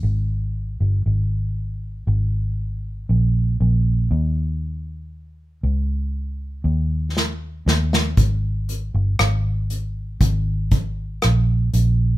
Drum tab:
HH |----------------|----------------|x-x-x-x-x-x-x-x-|
SD |----------------|------------o-oo|----r-------r---|
BD |----------------|----------------|o-------o-o-----|